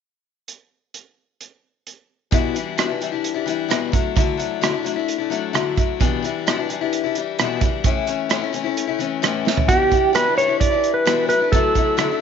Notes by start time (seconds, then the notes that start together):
0.48 closed hi-hat
0.94 closed hi-hat
1.41 closed hi-hat
1.87 closed hi-hat
2.31 E2 B2 E3 G3 D4 E4, kick, closed hi-hat
2.55 E3 G3 D4 E4, closed hi-hat
2.78 E2 B2 E3 G3 D4 E4, cross-stick, closed hi-hat
2.88 E3 G3 D4 E4
3.01 E3 G3 D4 E4, closed hi-hat
3.12 E3 G3 D4 E4
3.24 closed hi-hat
3.34 E3 G3 D4 E4
3.46 E3 G3 D4 E4, closed hi-hat
3.69 E2 B2 E3 G3 D4 E4, cross-stick, closed hi-hat
3.92 F#3 A3 D4 E4, kick, closed hi-hat
4.16 D3 F#3 A3 D4 E4, kick, closed hi-hat
4.37 F#3 A3 D4 E4, closed hi-hat
4.61 D3 F#3 A3 D4 E4, cross-stick, closed hi-hat
4.72 A3 D4 E4
4.83 F#3 A3 D4 E4, closed hi-hat
4.96 A3 D4 E4
5.08 closed hi-hat
5.18 A3 D4 E4
5.30 F#3 A3 D4 E4, closed hi-hat
5.53 D3 F#3 A3 D4 E4, cross-stick, closed hi-hat
5.76 F#3 A3 D4 E4, kick, closed hi-hat
6.00 E2 B2 E3 G3 D4 E4, kick, closed hi-hat
6.22 E3 G3 D4 E4, closed hi-hat
6.47 E2 B2 E3 G3 D4 E4, cross-stick, closed hi-hat
6.57 E3 G3 D4 E4
6.69 E3 G3 D4 E4, closed hi-hat
6.81 E3 G3 D4 E4
6.93 closed hi-hat
7.04 E3 G3 D4 E4
7.15 E3 G3 D4 E4, closed hi-hat
7.39 E2 B2 E3 G3 D4 E4, cross-stick, closed hi-hat
7.61 E3 G3 D4, kick, closed hi-hat
7.65 E4
7.84 A2 E3 A3 C#4 E4, kick, closed hi-hat
8.07 E3 A3 C#4 E4, closed hi-hat
8.29 A2 E3 A3 C#4 E4, cross-stick, closed hi-hat
8.42 A3 C#4 E4
8.53 E3 A3 C#4 E4, closed hi-hat
8.64 A3 C#4 E4
8.77 closed hi-hat
8.87 A3 C#4 E4
8.99 E3 A3 C#4 E4, closed hi-hat
9.22 A2 E3 A3 C#4 E4, cross-stick, closed hi-hat
9.45 E3 A3 C#4 E4, snare
9.57 floor tom
9.68 E2 B2 E3 G3 D4 E4 G4, kick, closed hi-hat
9.91 E3 G3 D4 E4, kick, closed hi-hat
10.13 E2 B2 E3 G3 D4 E4 B4, cross-stick, closed hi-hat
10.26 E3 G3 D4 E4
10.37 E3 G3 D4 E4 C#5, closed hi-hat
10.48 E3 G3 D4 E4
10.60 D5, kick, closed hi-hat
10.71 E3 G3 D4 E4
10.84 closed hi-hat
10.94 B4
11.06 E2 B2 E3 G3 D4 E4, cross-stick, closed hi-hat
11.28 F#3 A3 D4 E4 B4, closed hi-hat
11.40 A3 D4 E4
11.52 D3 F#3 A3 D4 E4 A4, kick, closed hi-hat
11.75 F#3 A3 D4 E4, kick, closed hi-hat
11.97 D3 F#3 A3 D4 E4, cross-stick, closed hi-hat
12.09 A3 D4 E4